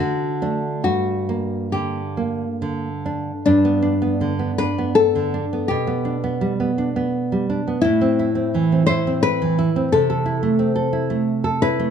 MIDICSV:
0, 0, Header, 1, 3, 480
1, 0, Start_track
1, 0, Key_signature, -2, "minor"
1, 0, Tempo, 878477
1, 466, Time_signature, 3, 2, 24, 8
1, 1433, Tempo, 841515
1, 1912, Key_signature, 1, "major"
1, 1913, Tempo, 742574
1, 3353, Tempo, 717703
1, 4313, Tempo, 702576
1, 5753, Tempo, 683371
1, 7627, End_track
2, 0, Start_track
2, 0, Title_t, "Nylon-string guitar"
2, 0, Program_c, 0, 24
2, 0, Note_on_c, 0, 66, 42
2, 441, Note_off_c, 0, 66, 0
2, 459, Note_on_c, 0, 66, 37
2, 924, Note_off_c, 0, 66, 0
2, 941, Note_on_c, 0, 67, 29
2, 1655, Note_off_c, 0, 67, 0
2, 1908, Note_on_c, 0, 62, 43
2, 2607, Note_off_c, 0, 62, 0
2, 2636, Note_on_c, 0, 71, 46
2, 2861, Note_off_c, 0, 71, 0
2, 2874, Note_on_c, 0, 69, 50
2, 3324, Note_off_c, 0, 69, 0
2, 3346, Note_on_c, 0, 67, 41
2, 4522, Note_off_c, 0, 67, 0
2, 4783, Note_on_c, 0, 64, 44
2, 5479, Note_off_c, 0, 64, 0
2, 5500, Note_on_c, 0, 72, 48
2, 5729, Note_off_c, 0, 72, 0
2, 5747, Note_on_c, 0, 71, 54
2, 6205, Note_off_c, 0, 71, 0
2, 6237, Note_on_c, 0, 69, 49
2, 7402, Note_off_c, 0, 69, 0
2, 7428, Note_on_c, 0, 71, 51
2, 7627, Note_off_c, 0, 71, 0
2, 7627, End_track
3, 0, Start_track
3, 0, Title_t, "Nylon-string guitar"
3, 0, Program_c, 1, 24
3, 0, Note_on_c, 1, 50, 35
3, 229, Note_on_c, 1, 57, 27
3, 231, Note_on_c, 1, 62, 31
3, 446, Note_off_c, 1, 57, 0
3, 447, Note_off_c, 1, 62, 0
3, 452, Note_off_c, 1, 50, 0
3, 462, Note_on_c, 1, 43, 33
3, 705, Note_on_c, 1, 58, 29
3, 951, Note_on_c, 1, 50, 25
3, 1092, Note_off_c, 1, 58, 0
3, 1187, Note_on_c, 1, 58, 25
3, 1336, Note_off_c, 1, 50, 0
3, 1431, Note_on_c, 1, 50, 30
3, 1580, Note_off_c, 1, 58, 0
3, 1680, Note_on_c, 1, 62, 27
3, 1824, Note_off_c, 1, 50, 0
3, 1887, Note_off_c, 1, 43, 0
3, 1911, Note_off_c, 1, 62, 0
3, 1916, Note_on_c, 1, 43, 38
3, 2032, Note_on_c, 1, 59, 31
3, 2146, Note_on_c, 1, 62, 31
3, 2225, Note_off_c, 1, 59, 0
3, 2271, Note_on_c, 1, 59, 28
3, 2343, Note_off_c, 1, 62, 0
3, 2395, Note_on_c, 1, 50, 29
3, 2465, Note_off_c, 1, 59, 0
3, 2513, Note_on_c, 1, 59, 24
3, 2587, Note_off_c, 1, 50, 0
3, 2641, Note_on_c, 1, 62, 29
3, 2707, Note_off_c, 1, 59, 0
3, 2766, Note_on_c, 1, 59, 27
3, 2831, Note_off_c, 1, 62, 0
3, 3006, Note_on_c, 1, 50, 28
3, 3125, Note_on_c, 1, 62, 32
3, 3146, Note_off_c, 1, 59, 0
3, 3192, Note_off_c, 1, 50, 0
3, 3247, Note_on_c, 1, 59, 28
3, 3309, Note_off_c, 1, 62, 0
3, 3328, Note_off_c, 1, 43, 0
3, 3358, Note_off_c, 1, 59, 0
3, 3362, Note_on_c, 1, 47, 39
3, 3474, Note_on_c, 1, 59, 29
3, 3592, Note_on_c, 1, 62, 32
3, 3663, Note_off_c, 1, 59, 0
3, 3717, Note_on_c, 1, 59, 30
3, 3782, Note_off_c, 1, 62, 0
3, 3835, Note_on_c, 1, 55, 28
3, 3906, Note_off_c, 1, 59, 0
3, 3960, Note_on_c, 1, 59, 25
3, 4025, Note_off_c, 1, 55, 0
3, 4082, Note_on_c, 1, 62, 28
3, 4149, Note_off_c, 1, 59, 0
3, 4201, Note_on_c, 1, 59, 26
3, 4269, Note_off_c, 1, 62, 0
3, 4446, Note_on_c, 1, 55, 30
3, 4562, Note_off_c, 1, 59, 0
3, 4565, Note_on_c, 1, 62, 29
3, 4630, Note_off_c, 1, 55, 0
3, 4688, Note_on_c, 1, 59, 32
3, 4748, Note_off_c, 1, 62, 0
3, 4767, Note_off_c, 1, 47, 0
3, 4797, Note_off_c, 1, 59, 0
3, 4804, Note_on_c, 1, 45, 38
3, 4918, Note_on_c, 1, 60, 33
3, 5041, Note_on_c, 1, 64, 31
3, 5104, Note_off_c, 1, 60, 0
3, 5150, Note_on_c, 1, 60, 32
3, 5226, Note_off_c, 1, 64, 0
3, 5281, Note_on_c, 1, 52, 29
3, 5342, Note_off_c, 1, 60, 0
3, 5403, Note_on_c, 1, 60, 28
3, 5468, Note_off_c, 1, 52, 0
3, 5517, Note_on_c, 1, 64, 32
3, 5590, Note_off_c, 1, 60, 0
3, 5641, Note_on_c, 1, 60, 30
3, 5707, Note_off_c, 1, 64, 0
3, 5881, Note_on_c, 1, 52, 33
3, 5999, Note_on_c, 1, 64, 37
3, 6025, Note_off_c, 1, 60, 0
3, 6072, Note_off_c, 1, 52, 0
3, 6122, Note_on_c, 1, 60, 31
3, 6189, Note_off_c, 1, 64, 0
3, 6214, Note_off_c, 1, 45, 0
3, 6238, Note_off_c, 1, 60, 0
3, 6242, Note_on_c, 1, 48, 40
3, 6359, Note_on_c, 1, 69, 34
3, 6471, Note_on_c, 1, 64, 34
3, 6544, Note_off_c, 1, 69, 0
3, 6590, Note_on_c, 1, 57, 31
3, 6660, Note_off_c, 1, 64, 0
3, 6705, Note_on_c, 1, 60, 33
3, 6780, Note_off_c, 1, 57, 0
3, 6821, Note_on_c, 1, 69, 32
3, 6897, Note_off_c, 1, 60, 0
3, 6942, Note_on_c, 1, 64, 34
3, 7016, Note_off_c, 1, 69, 0
3, 7063, Note_on_c, 1, 57, 31
3, 7136, Note_off_c, 1, 64, 0
3, 7303, Note_on_c, 1, 69, 35
3, 7432, Note_on_c, 1, 64, 36
3, 7452, Note_off_c, 1, 57, 0
3, 7500, Note_off_c, 1, 69, 0
3, 7552, Note_on_c, 1, 57, 37
3, 7625, Note_off_c, 1, 64, 0
3, 7627, Note_off_c, 1, 48, 0
3, 7627, Note_off_c, 1, 57, 0
3, 7627, End_track
0, 0, End_of_file